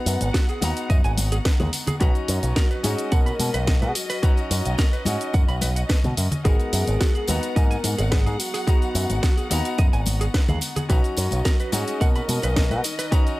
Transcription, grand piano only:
0, 0, Header, 1, 2, 480
1, 0, Start_track
1, 0, Key_signature, 5, "minor"
1, 0, Tempo, 555556
1, 1736, Time_signature, 4, 2, 24, 8
1, 11577, End_track
2, 0, Start_track
2, 0, Title_t, "Grand piano"
2, 0, Program_c, 0, 0
2, 0, Note_on_c, 0, 59, 93
2, 0, Note_on_c, 0, 63, 85
2, 0, Note_on_c, 0, 66, 84
2, 0, Note_on_c, 0, 82, 101
2, 505, Note_off_c, 0, 59, 0
2, 508, Note_off_c, 0, 63, 0
2, 511, Note_off_c, 0, 66, 0
2, 514, Note_off_c, 0, 82, 0
2, 528, Note_on_c, 0, 59, 91
2, 533, Note_on_c, 0, 63, 85
2, 539, Note_on_c, 0, 66, 84
2, 546, Note_on_c, 0, 82, 101
2, 1704, Note_off_c, 0, 59, 0
2, 1707, Note_off_c, 0, 63, 0
2, 1710, Note_off_c, 0, 66, 0
2, 1713, Note_off_c, 0, 82, 0
2, 1725, Note_on_c, 0, 61, 91
2, 1731, Note_on_c, 0, 63, 88
2, 1738, Note_on_c, 0, 66, 86
2, 1743, Note_on_c, 0, 82, 102
2, 2423, Note_off_c, 0, 61, 0
2, 2426, Note_off_c, 0, 63, 0
2, 2429, Note_off_c, 0, 66, 0
2, 2432, Note_off_c, 0, 82, 0
2, 2447, Note_on_c, 0, 61, 88
2, 2453, Note_on_c, 0, 63, 83
2, 2459, Note_on_c, 0, 66, 82
2, 3624, Note_off_c, 0, 61, 0
2, 3627, Note_off_c, 0, 63, 0
2, 3630, Note_off_c, 0, 66, 0
2, 3650, Note_on_c, 0, 61, 92
2, 3655, Note_on_c, 0, 63, 83
2, 3660, Note_on_c, 0, 66, 87
2, 3666, Note_on_c, 0, 82, 102
2, 4345, Note_off_c, 0, 61, 0
2, 4348, Note_off_c, 0, 63, 0
2, 4350, Note_off_c, 0, 66, 0
2, 4353, Note_off_c, 0, 82, 0
2, 4368, Note_on_c, 0, 61, 87
2, 4374, Note_on_c, 0, 63, 83
2, 4379, Note_on_c, 0, 66, 82
2, 5544, Note_off_c, 0, 61, 0
2, 5548, Note_off_c, 0, 63, 0
2, 5550, Note_off_c, 0, 66, 0
2, 5567, Note_on_c, 0, 59, 92
2, 5572, Note_on_c, 0, 63, 86
2, 5580, Note_on_c, 0, 66, 83
2, 5583, Note_on_c, 0, 70, 100
2, 6264, Note_off_c, 0, 59, 0
2, 6266, Note_off_c, 0, 63, 0
2, 6270, Note_off_c, 0, 66, 0
2, 6272, Note_off_c, 0, 70, 0
2, 6287, Note_on_c, 0, 59, 92
2, 6293, Note_on_c, 0, 63, 83
2, 6298, Note_on_c, 0, 66, 83
2, 6304, Note_on_c, 0, 82, 98
2, 7464, Note_off_c, 0, 59, 0
2, 7467, Note_off_c, 0, 63, 0
2, 7469, Note_off_c, 0, 66, 0
2, 7472, Note_off_c, 0, 82, 0
2, 7488, Note_on_c, 0, 59, 93
2, 7494, Note_on_c, 0, 63, 84
2, 7500, Note_on_c, 0, 66, 86
2, 7505, Note_on_c, 0, 82, 100
2, 8184, Note_off_c, 0, 59, 0
2, 8187, Note_off_c, 0, 63, 0
2, 8191, Note_off_c, 0, 66, 0
2, 8193, Note_off_c, 0, 82, 0
2, 8206, Note_on_c, 0, 59, 94
2, 8212, Note_on_c, 0, 63, 84
2, 8218, Note_on_c, 0, 66, 84
2, 8223, Note_on_c, 0, 82, 100
2, 9383, Note_off_c, 0, 59, 0
2, 9386, Note_off_c, 0, 63, 0
2, 9389, Note_off_c, 0, 66, 0
2, 9392, Note_off_c, 0, 82, 0
2, 9407, Note_on_c, 0, 61, 91
2, 9412, Note_on_c, 0, 63, 86
2, 9417, Note_on_c, 0, 66, 86
2, 9423, Note_on_c, 0, 82, 103
2, 10104, Note_off_c, 0, 61, 0
2, 10106, Note_off_c, 0, 63, 0
2, 10109, Note_off_c, 0, 66, 0
2, 10112, Note_off_c, 0, 82, 0
2, 10128, Note_on_c, 0, 61, 96
2, 10135, Note_on_c, 0, 63, 84
2, 10139, Note_on_c, 0, 66, 86
2, 11305, Note_off_c, 0, 61, 0
2, 11308, Note_off_c, 0, 63, 0
2, 11310, Note_off_c, 0, 66, 0
2, 11329, Note_on_c, 0, 61, 97
2, 11333, Note_on_c, 0, 63, 87
2, 11340, Note_on_c, 0, 66, 86
2, 11345, Note_on_c, 0, 82, 107
2, 11577, Note_off_c, 0, 61, 0
2, 11577, Note_off_c, 0, 63, 0
2, 11577, Note_off_c, 0, 66, 0
2, 11577, Note_off_c, 0, 82, 0
2, 11577, End_track
0, 0, End_of_file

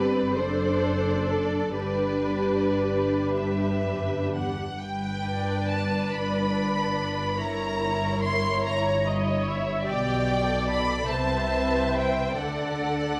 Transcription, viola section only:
0, 0, Header, 1, 2, 480
1, 0, Start_track
1, 0, Key_signature, 1, "major"
1, 0, Tempo, 930233
1, 922, Time_signature, 6, 3, 24, 8
1, 923, Tempo, 1030928
1, 1883, Tempo, 950872
1, 2363, Tempo, 869565
1, 3803, Tempo, 821918
1, 5723, Tempo, 868307
1, 7105, End_track
2, 0, Start_track
2, 0, Title_t, "Viola section"
2, 0, Program_c, 0, 48
2, 0, Note_on_c, 0, 60, 35
2, 0, Note_on_c, 0, 67, 38
2, 176, Note_off_c, 0, 67, 0
2, 191, Note_off_c, 0, 60, 0
2, 203, Note_on_c, 0, 62, 39
2, 205, Note_on_c, 0, 69, 39
2, 922, Note_off_c, 0, 62, 0
2, 926, Note_off_c, 0, 69, 0
2, 926, Note_on_c, 0, 67, 33
2, 928, Note_on_c, 0, 62, 30
2, 2237, Note_off_c, 0, 67, 0
2, 2238, Note_off_c, 0, 62, 0
2, 2365, Note_on_c, 0, 71, 37
2, 3780, Note_off_c, 0, 71, 0
2, 3805, Note_on_c, 0, 70, 38
2, 4530, Note_off_c, 0, 70, 0
2, 4533, Note_on_c, 0, 73, 42
2, 4766, Note_off_c, 0, 73, 0
2, 4770, Note_on_c, 0, 75, 45
2, 5011, Note_off_c, 0, 75, 0
2, 5012, Note_on_c, 0, 76, 44
2, 5246, Note_on_c, 0, 74, 49
2, 5251, Note_off_c, 0, 76, 0
2, 5947, Note_on_c, 0, 72, 44
2, 5952, Note_off_c, 0, 74, 0
2, 6655, Note_off_c, 0, 72, 0
2, 6677, Note_on_c, 0, 69, 33
2, 7105, Note_off_c, 0, 69, 0
2, 7105, End_track
0, 0, End_of_file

